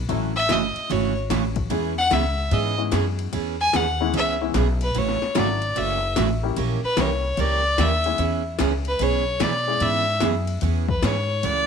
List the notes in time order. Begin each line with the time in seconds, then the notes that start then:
0.09 A1 C#3 E3 F#3 A3 C#4 E4 F#4, kick, ride
0.36 E5
0.49 F#1 C#3 E3 A3 C#4 F#4 D#5, kick, snare, hi-hat pedal, ride
0.76 muted upright bass stroke, ride
0.90 G#1 C#3 E3 A3 C#4 F#4 C#5, kick, ride
1.30 A1 C#3 E3 A3 C#4 F#4, kick, snare, hi-hat pedal, ride
1.56 kick, ride
1.70 E2 E3 G#3 B3 C#4 E4 G#4, kick, ride
1.98 F#5
2.10 C#2 E3 B3 C#4 G#4 E5, kick, snare, hi-hat pedal, ride
2.51 G#2 E3 B3 C#4 G#4 D#5, kick, ride
2.78 E3 G#3 B3 C#4 E4
2.91 F#2 E3 B3 C#4 G#4, kick, snare, hi-hat pedal, ride
3.19 ride
3.33 E2 E3 B3 C#4 G#4, kick, ride
3.61 G#5
3.73 D#2 E3 B3 C#4 G#4 F#5, kick, snare, hi-hat pedal, ride
4.00 E3 G#3 B3 C#4 E4
4.13 C#2 E3 B3 C#4 G#4 E5, kick, ride
4.41 E3 G#3 B3 C#4 E4
4.54 B1 E3 B3 C#4 G#4, kick, snare, hi-hat pedal, ride
4.81 B4, ride
4.95 A1 C#3 E3 A3 C#4 F#4 C#5, kick, ride
5.09 snare
5.22 muted upright bass stroke, snare
5.35 G#1 C#3 E3 F#3 A3 C#4 E4 F#4, kick, snare, hi-hat pedal, ride
5.39 D5
5.62 ride
5.75 F#1 C#3 E3 A3 C#4 F#4 E5, kick, ride
6.16 A1 C#3 E3 A3 C#4 F#4, kick, snare, hi-hat pedal, ride
6.43 G3 A#3 C#4 E4 G4
6.57 A#1 E3 A#3 C#4 G4 A#4, kick, ride
6.84 B4, muted upright bass stroke
6.97 C2 E3 G3 A#3 C#4 E4 G4 A#4 C#5, kick, snare, hi-hat pedal, ride
7.37 C#2 E3 A#3 C#4 G4 A#4 D5, kick, ride
7.78 D#2 E3 A#3 C#4 G4 A#4 E5, kick, snare, hi-hat pedal, ride
8.04 G#3 B3 C#4 E4 G#4, ride
8.18 E2 E3 B3 C#4 G#4, kick, ride
8.59 C#2 E3 B3 C#4 G#4, kick, snare, hi-hat pedal, ride
8.85 B4, ride
8.99 B1 E3 B3 C#4 G#4 C#5, kick, ride
9.40 B2 E3 B3 C#4 G#4 D5, kick, snare, hi-hat pedal, ride
9.67 G#3 B3 C#4 E4 G#4
9.80 G#2 E3 B3 C#4 G#4 E5, kick, ride
10.20 F#2 E3 G#3 B3 C#4 E4 G#4, kick, snare, hi-hat pedal, ride
10.47 ride
10.61 E2 E3 B3 C#4 G#4, kick, ride
10.89 B4, kick
11.03 G#2 E3 B3 C#4 G#4 C#5, kick, snare, hi-hat pedal, ride
11.43 C#2 C#3 E3 A3 C#4 F#4 D5, kick, ride